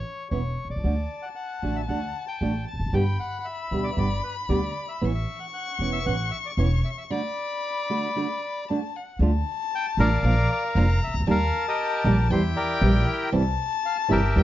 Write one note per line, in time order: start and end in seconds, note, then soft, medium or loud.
0.00 0.28 C#5 medium
0.31 0.54 E1 medium
0.31 0.41 E3 medium
0.31 0.41 B3 medium
0.31 0.41 C#4 soft
0.31 0.41 E4 medium
0.31 0.68 C#5 medium
0.65 0.69 B1 soft
0.70 0.75 C2 soft
0.70 1.25 D5 soft
0.76 0.83 C#2 medium
0.83 1.06 D2 medium
0.83 0.94 D3 medium
0.83 0.93 A3 medium
0.83 0.94 D4 medium
0.83 0.93 F#4 medium
0.83 2.89 A5 medium
1.22 1.29 F#5 medium
1.35 1.77 F#5 medium
1.62 1.85 A1 soft
1.62 1.80 D3 soft
1.62 1.80 A3 soft
1.62 1.80 D4 soft
1.62 1.80 F#4 medium
1.75 1.82 E5 medium
1.88 2.11 D2 medium
1.88 1.98 D3 soft
1.88 1.99 A3 soft
1.88 1.99 D4 soft
1.88 1.99 F#4 soft
1.88 2.25 F#5 medium
2.28 2.65 G5 medium
2.41 2.63 A1 medium
2.41 2.51 D3 medium
2.41 2.50 A3 medium
2.41 2.51 D4 medium
2.41 2.51 F#4 medium
2.68 2.94 A5 medium
2.73 2.79 E1 soft
2.79 2.86 F1 soft
2.86 2.92 F#1 medium
2.93 3.15 G1 medium
2.93 3.02 B2 medium
2.93 3.03 D3 medium
2.93 3.02 G3 medium
2.93 3.03 B3 medium
2.93 3.03 G4 medium
2.93 3.18 G5 medium
2.93 5.07 B5 medium
3.20 3.38 F#5 medium
3.40 3.46 F#5 soft
3.45 3.86 E5 medium
3.71 3.93 D2 soft
3.71 3.89 B2 medium
3.71 3.89 D3 soft
3.71 3.89 G3 soft
3.71 3.89 B3 soft
3.71 3.89 G4 medium
3.84 3.91 D5 medium
3.92 4.06 B2 soft
3.92 3.99 E5 medium
3.97 4.19 G1 medium
3.97 4.06 D3 medium
3.97 4.06 G3 medium
3.97 4.07 B3 medium
3.97 4.07 G4 medium
3.97 4.22 D5 medium
4.24 4.35 B4 medium
4.49 4.71 D2 medium
4.49 4.58 B2 medium
4.49 4.59 D3 medium
4.49 4.59 G3 medium
4.49 4.59 B3 medium
4.49 4.59 G4 medium
4.49 4.86 D5 medium
4.88 5.13 E5 soft
5.01 5.24 A1 medium
5.01 5.11 E3 medium
5.01 5.11 B3 medium
5.01 5.11 C#4 medium
5.01 5.11 E4 medium
5.01 7.12 C#6 medium
5.14 5.39 E5 medium
5.40 5.46 F#5 medium
5.54 5.90 F#5 medium
5.79 6.02 E1 soft
5.79 5.98 E3 soft
5.79 5.98 B3 medium
5.79 5.98 C#4 medium
5.79 5.98 E4 medium
5.92 6.05 E5 medium
6.06 6.28 A1 medium
6.06 6.15 E3 medium
6.06 6.15 B3 medium
6.06 6.15 C#4 medium
6.06 6.16 E4 medium
6.06 6.31 F#5 medium
6.31 6.37 E5 medium
6.45 6.51 D5 soft
6.57 6.80 E1 medium
6.57 6.67 E3 medium
6.57 6.68 B3 medium
6.57 6.68 C#4 medium
6.57 6.68 E4 medium
6.57 6.83 C#5 medium
6.84 6.90 E5 medium
6.97 7.03 E5 medium
7.10 7.20 D3 medium
7.10 7.20 A3 medium
7.10 7.20 D4 medium
7.10 7.20 F#4 medium
7.10 8.64 D5 medium
7.10 8.70 B5 medium
7.90 8.07 D3 soft
7.90 8.07 A3 medium
7.90 8.07 D4 medium
7.90 8.07 F#4 medium
8.16 8.25 D3 medium
8.16 8.25 A3 medium
8.16 8.26 D4 medium
8.16 8.25 F#4 medium
8.69 8.78 D3 medium
8.69 8.78 A3 medium
8.69 8.79 D4 medium
8.69 8.79 F#4 medium
8.69 8.97 A5 medium
8.96 9.21 F#5 medium
9.19 9.42 D2 medium
9.19 9.30 D3 medium
9.19 9.30 A3 medium
9.19 9.30 D4 medium
9.19 9.31 F4 medium
9.24 10.27 A5 loud
9.75 9.86 G5 loud
9.97 10.20 A1 medium
9.97 10.08 D3 medium
9.97 10.08 A3 medium
9.97 10.08 D4 medium
9.97 10.08 F4 medium
9.97 10.99 A#4 medium
9.97 10.51 D5 medium
9.97 10.48 F5 loud
10.23 10.45 A#1 medium
10.23 10.33 F3 medium
10.23 10.34 A#3 medium
10.23 10.34 D4 medium
10.23 10.34 F4 medium
10.23 10.79 F5 medium
10.52 10.63 D5 medium
10.75 10.97 F1 medium
10.75 10.85 F3 medium
10.75 10.86 A#3 medium
10.75 10.86 D4 medium
10.75 10.86 F4 medium
10.75 11.01 F5 medium
10.75 11.29 A#5 loud
11.04 11.13 C2 soft
11.04 11.15 E5 medium
11.14 11.20 C#2 medium
11.20 11.27 D2 medium
11.27 11.49 D#2 medium
11.27 11.36 D#3 medium
11.27 11.36 G3 medium
11.27 11.37 A#3 medium
11.27 11.37 D#4 medium
11.27 11.37 G4 medium
11.27 11.67 A#4 medium
11.27 11.65 F5 loud
11.27 12.32 A5 loud
11.68 12.28 G4 medium
11.68 12.28 A#4 medium
11.68 12.07 D#5 medium
12.04 12.26 A#1 medium
12.04 12.14 D#3 medium
12.04 12.14 G3 medium
12.04 12.14 A#3 medium
12.04 12.14 D#4 medium
12.04 12.14 G4 medium
12.04 12.18 D5 medium
12.30 12.52 E2 medium
12.30 12.39 E3 medium
12.30 12.40 G3 medium
12.30 12.40 E4 medium
12.30 13.30 E4 medium
12.30 12.55 G4 medium
12.30 12.43 C5 medium
12.30 13.34 G5 loud
12.56 13.30 G4 medium
12.56 13.30 A#4 medium
12.56 13.04 D5 medium
12.82 13.04 A#1 loud
12.82 12.91 E3 medium
12.82 12.91 G3 medium
12.82 12.91 E4 medium
13.32 13.55 C2 medium
13.32 13.42 C3 medium
13.32 13.42 E3 medium
13.32 13.42 G3 medium
13.32 13.42 C4 medium
13.32 13.43 E4 loud
13.32 14.40 A5 loud
13.86 13.97 F5 medium
14.08 14.32 G1 medium
14.08 14.19 C3 medium
14.08 14.19 E3 medium
14.08 14.19 G3 medium
14.08 14.19 C4 medium
14.08 14.19 E4 loud
14.08 14.43 G4 medium
14.08 14.43 A#4 medium
14.08 14.43 E5 medium
14.36 14.43 E2 medium
14.36 14.43 E3 medium
14.36 14.43 G3 medium
14.36 14.43 E4 medium
14.36 14.43 G5 loud